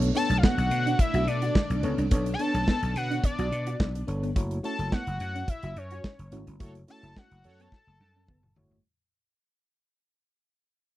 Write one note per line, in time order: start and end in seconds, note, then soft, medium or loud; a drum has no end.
0.00 4.32 D3 medium
0.00 2.09 A3 medium
0.00 4.32 D4 medium
0.00 muted clean electric guitar stroke soft
0.00 closed hi-hat medium
0.15 1.02 B3 medium
0.15 0.26 D4 medium
0.15 1.02 D4 medium
0.15 1.03 A4 medium
0.15 1.03 C#5 medium
0.15 0.39 A5 loud
0.15 closed hi-hat medium
0.30 0.40 B1 loud
0.30 0.40 A3 medium
0.30 closed hi-hat medium
0.38 0.45 F5 medium
0.43 0.54 B3 medium
0.43 1.02 F#5 loud
0.43 kick loud
0.43 snare loud
0.58 0.68 B1 medium
0.58 muted clean electric guitar stroke soft
0.58 closed hi-hat medium
0.71 0.93 B2 loud
0.71 closed hi-hat medium
0.86 0.96 D4 medium
0.86 closed hi-hat medium
0.99 1.29 E5 loud
0.99 kick loud
0.99 closed hi-hat medium
1.14 1.24 B1 loud
1.14 1.24 F#4 medium
1.14 closed hi-hat medium
1.27 1.49 B2 medium
1.27 1.84 D5 medium
1.27 muted clean electric guitar stroke soft
1.27 closed hi-hat medium
1.42 1.52 F#4 medium
1.42 closed hi-hat medium
1.55 kick loud
1.55 snare loud
1.70 1.81 B1 medium
1.70 closed hi-hat medium
1.83 1.95 C#2 medium
1.83 2.05 B3 medium
1.83 1.94 D4 medium
1.83 2.05 D4 medium
1.83 2.06 A4 medium
1.83 2.06 C#5 medium
1.83 closed hi-hat medium
1.98 2.09 C2 medium
1.98 2.08 D4 medium
1.98 closed hi-hat medium
2.11 2.34 B1 loud
2.11 2.33 B3 medium
2.11 4.33 B3 medium
2.11 2.34 D4 medium
2.11 2.34 A4 medium
2.11 2.34 C#5 loud
2.11 kick loud
2.11 closed hi-hat loud
2.26 muted clean electric guitar stroke soft
2.26 closed hi-hat medium
2.34 2.42 G#5 medium
2.39 3.27 B3 medium
2.39 2.50 D4 medium
2.39 3.27 D4 medium
2.39 3.27 A4 medium
2.39 3.27 C#5 medium
2.39 2.96 A5 loud
2.39 closed hi-hat medium
2.54 2.65 B1 loud
2.54 2.64 A3 medium
2.54 closed hi-hat medium
2.67 2.78 B3 medium
2.67 kick medium
2.67 snare loud
2.82 2.93 B1 medium
2.82 muted clean electric guitar stroke soft
2.82 closed hi-hat medium
2.96 3.18 B2 loud
2.96 3.22 F#5 loud
2.96 closed hi-hat medium
3.10 3.20 D4 medium
3.10 closed hi-hat medium
3.24 4.04 D5 loud
3.24 kick loud
3.24 closed hi-hat medium
3.39 3.49 B1 loud
3.39 3.48 F#4 medium
3.39 closed hi-hat medium
3.52 3.74 B2 loud
3.52 muted clean electric guitar stroke soft
3.52 closed hi-hat medium
3.67 3.77 F#4 medium
3.67 closed hi-hat medium
3.80 4.02 B1 medium
3.80 3.91 D4 medium
3.80 kick loud
3.80 snare loud
3.95 muted clean electric guitar stroke soft
3.95 closed hi-hat medium
4.07 4.30 G1 medium
4.07 4.30 B3 medium
4.07 4.30 D4 medium
4.07 4.30 A4 medium
4.07 4.30 C#5 medium
4.07 closed hi-hat medium
4.23 4.33 B3 medium
4.23 closed hi-hat medium
4.36 4.58 F#1 loud
4.36 4.58 A3 medium
4.36 4.58 E4 medium
4.36 4.58 F#4 medium
4.36 4.58 C#5 loud
4.36 kick loud
4.36 closed hi-hat medium
4.51 muted clean electric guitar stroke soft
4.51 closed hi-hat medium
4.63 5.51 A3 medium
4.63 4.75 C#4 medium
4.63 5.51 E4 medium
4.63 5.51 F#4 medium
4.63 5.51 C#5 medium
4.63 4.94 A5 loud
4.63 closed hi-hat medium
4.79 4.89 F#1 medium
4.79 4.89 A3 medium
4.79 closed hi-hat medium
4.92 5.03 B3 medium
4.92 5.51 F#5 loud
4.92 kick loud
4.92 snare loud
5.07 5.17 F#1 medium
5.07 closed hi-hat soft
5.20 5.43 F#2 loud
5.20 closed hi-hat medium
5.35 5.45 C#4 medium
5.35 closed hi-hat soft
5.48 5.79 E5 loud
5.48 kick loud
5.48 closed hi-hat medium
5.63 5.73 F#1 loud
5.63 5.73 F#4 medium
5.63 closed hi-hat soft
5.76 5.98 F#2 loud
5.76 6.33 C#5 medium
5.76 muted clean electric guitar stroke soft
5.76 closed hi-hat medium
5.91 6.01 F#4 medium
5.91 closed hi-hat medium
6.04 muted clean electric guitar stroke soft
6.04 kick loud
6.04 snare loud
6.19 6.29 F#1 medium
6.19 closed hi-hat medium
6.32 6.44 G#1 medium
6.32 6.54 A3 medium
6.32 6.43 C#4 medium
6.32 6.54 E4 medium
6.32 6.54 F#4 medium
6.32 6.54 C#5 medium
6.32 closed hi-hat medium
6.47 6.58 G1 medium
6.47 6.57 C#4 medium
6.47 closed hi-hat medium
6.60 6.83 F#1 loud
6.60 6.82 A3 medium
6.60 6.82 E4 medium
6.60 6.82 F#4 medium
6.60 6.73 F#4 medium
6.60 6.73 A4 medium
6.60 6.73 C#5 medium
6.60 6.82 C#5 loud
6.60 kick loud
6.60 closed hi-hat medium
6.75 muted clean electric guitar stroke soft
6.75 closed hi-hat medium
6.88 7.75 A3 medium
6.88 6.99 C#4 medium
6.88 7.75 E4 medium
6.88 7.75 F#4 medium
6.88 7.76 C#5 medium
6.88 7.19 A5 loud
6.88 closed hi-hat medium
7.03 7.13 F#1 medium
7.03 7.13 E4 medium
7.03 closed hi-hat medium
7.16 7.28 C#4 medium
7.16 7.62 F#5 loud
7.16 kick loud
7.16 snare loud
7.31 7.46 F#1 medium
7.31 muted clean electric guitar stroke soft
7.31 closed hi-hat soft
7.44 7.67 F#2 loud
7.44 7.68 F#4 loud
7.44 7.68 A4 loud
7.44 7.68 C#5 loud
7.44 closed hi-hat medium
7.60 7.69 B3 medium
7.60 8.57 A5 loud
7.60 closed hi-hat medium
7.72 kick loud
7.72 snare medium
7.87 7.98 F#1 loud
7.87 7.97 A3 medium
8.00 8.30 F#2 loud
8.00 muted clean electric guitar stroke soft
8.00 high tom medium
8.16 8.25 C#4 medium
8.28 8.51 F#1 medium
8.28 8.40 B3 medium
8.28 kick loud
8.28 mid tom medium
8.43 mid tom medium
8.56 8.79 G1 medium
8.56 8.78 A3 medium
8.56 8.79 E4 medium
8.56 8.79 F#4 medium
8.56 8.79 C#5 loud
8.56 floor tom loud
8.71 8.81 A3 medium
8.71 floor tom medium